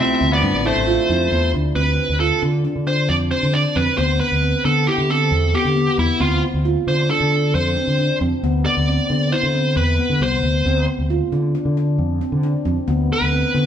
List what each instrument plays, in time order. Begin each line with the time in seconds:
Already playing: grand piano C3 F3 A3 E4
0.00 handpan C4, clean electric guitar C4, lead electric guitar E5
0.21 fretless electric bass D2, handpan C4
0.32 clean electric guitar B3, lead electric guitar D5
0.42 fretless electric bass G2, handpan D4
0.54 fretless electric bass A1
0.65 clean electric guitar A3, handpan E4, lead electric guitar C5
0.76 fretless electric bass A1
0.87 handpan F4
1.09 fretless electric bass F2, handpan E4
1.31 fretless electric bass E2
1.54 fretless electric bass D2, handpan D4
1.76 fretless electric bass D2, handpan C4, lead electric guitar B4
2.09 fretless electric bass D2
2.20 handpan F4, lead electric guitar A4
2.42 fretless electric bass D3, handpan D4
2.64 handpan D4
2.76 fretless electric bass D3
2.87 handpan D4, lead electric guitar C5
3.09 fretless electric bass F2, lead electric guitar D5
3.31 handpan C4, lead electric guitar C5
3.43 fretless electric bass D3
3.53 handpan D4, lead electric guitar D5
3.76 fretless electric bass F2, handpan C4, lead electric guitar B4
3.98 fretless electric bass D2, handpan B3, lead electric guitar C5
4.20 lead electric guitar B4
4.32 fretless electric bass D2
4.42 handpan C4
4.65 fretless electric bass D3, handpan B3, lead electric guitar A4
4.87 handpan E4, lead electric guitar G4
4.98 fretless electric bass D3
5.10 handpan C4, lead electric guitar A4
5.31 fretless electric bass E2
5.54 handpan B3, lead electric guitar G4
5.65 fretless electric bass D3
5.77 handpan B3
5.98 fretless electric bass E2, handpan B3, lead electric guitar E4
6.20 fretless electric bass D2, handpan C4, lead electric guitar F4
6.54 fretless electric bass D2
6.65 handpan F4
6.87 fretless electric bass D3, handpan D4, lead electric guitar C5
7.10 handpan D4, lead electric guitar A4
7.20 fretless electric bass D3
7.32 handpan D4
7.54 fretless electric bass F2, lead electric guitar C5
7.77 handpan C4
7.87 fretless electric bass D3
7.99 handpan D4
8.21 fretless electric bass F2, handpan C4
8.43 fretless electric bass D2, handpan B3
8.66 lead electric guitar D5
8.77 fretless electric bass D2
8.88 handpan C4
9.10 fretless electric bass D3, handpan B3
9.32 handpan E4, lead electric guitar C5
9.43 fretless electric bass D3
9.55 handpan C4
9.76 fretless electric bass E2, lead electric guitar B4
9.99 handpan B3
10.10 fretless electric bass D3
10.20 fretless electric bass C2, handpan B3, lead electric guitar C5
10.43 fretless electric bass D2, handpan B3
10.65 fretless electric bass D2, handpan C4
10.98 fretless electric bass D2
11.10 handpan F4
11.32 fretless electric bass D3, handpan D4
11.55 handpan D4
11.65 fretless electric bass D3
11.77 handpan D4
11.98 fretless electric bass F2
12.21 handpan C4
12.32 fretless electric bass D3
12.43 handpan D4
12.65 fretless electric bass F2, handpan C4
12.88 fretless electric bass D2, handpan B3
13.13 lead electric guitar B4
13.21 fretless electric bass D2
13.32 handpan C4
13.54 fretless electric bass D3, handpan B3